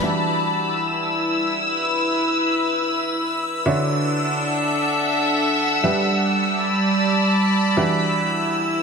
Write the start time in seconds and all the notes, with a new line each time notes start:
Already playing: G3 D5 A5 B5
0.03 E3 D4 E4 F#4 G4 E5 E6
0.91 B4
3.66 D3 D4 F#4 C#5 E5
4.16 F#5
4.26 A4 E5
5.84 G3 D4 G4 B4 E5
6.14 D5
6.55 A5
6.62 B5
7.77 E3 D4 E4 F#4 G4 E5 E6
8.77 B4